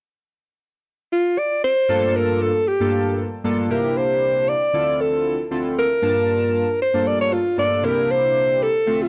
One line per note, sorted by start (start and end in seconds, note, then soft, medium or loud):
1.12 1.40 F4 medium
1.38 1.64 D5 loud
1.64 2.18 C5 loud
1.89 2.51 G2 medium
1.89 2.51 A#3 medium
1.89 2.51 D4 medium
1.89 2.51 F4 loud
1.89 2.51 A4 loud
2.16 2.44 A#4 medium
2.42 2.69 A4 medium
2.68 3.19 G4 medium
2.80 3.24 G2 medium
2.80 3.24 A#3 medium
2.80 3.24 D4 medium
2.80 3.24 F4 medium
2.80 3.24 A4 medium
3.44 3.70 G2 medium
3.44 3.69 A#3 medium
3.44 3.69 D4 medium
3.44 3.70 F4 medium
3.44 3.70 A4 loud
3.70 4.53 C3 medium
3.70 4.53 A#3 medium
3.70 4.53 D4 medium
3.70 4.53 E4 medium
3.70 4.53 G4 medium
3.70 3.99 A#4 medium
3.97 4.50 C5 loud
4.49 5.02 D5 loud
4.73 5.36 D3 medium
4.73 5.36 C4 medium
4.73 5.36 E4 medium
4.73 5.36 F4 medium
4.73 5.37 A4 medium
5.01 5.52 A4 medium
5.51 5.87 D3 medium
5.51 5.87 C4 medium
5.51 5.87 E4 medium
5.51 5.87 F4 medium
5.51 5.87 A4 medium
5.78 6.77 A#4 loud
6.02 6.65 G2 medium
6.02 6.65 A#3 medium
6.02 6.65 D4 medium
6.02 6.65 F4 medium
6.02 6.65 A5 loud
6.82 7.09 C5 medium
6.94 7.37 G2 medium
6.94 7.37 A#3 medium
6.94 7.38 D4 medium
6.94 7.38 F4 medium
6.94 7.38 A4 medium
7.07 7.20 D5 loud
7.21 7.35 C#5 loud
7.33 7.58 F4 medium
7.57 7.83 G2 medium
7.57 7.82 A#3 medium
7.57 7.82 D4 medium
7.57 7.84 F4 medium
7.57 7.84 A4 medium
7.57 7.86 D5 loud
7.83 8.66 C3 medium
7.83 8.67 A#3 medium
7.83 8.67 D4 medium
7.83 8.67 E4 medium
7.83 8.67 G4 medium
7.83 8.12 A#4 loud
8.11 8.64 C5 loud
8.63 9.04 A4 medium
8.86 9.08 D3 medium
8.86 9.08 A3 medium
8.86 9.08 C4 medium
8.86 9.08 F4 medium
8.86 9.08 E5 medium
9.02 9.08 F4 medium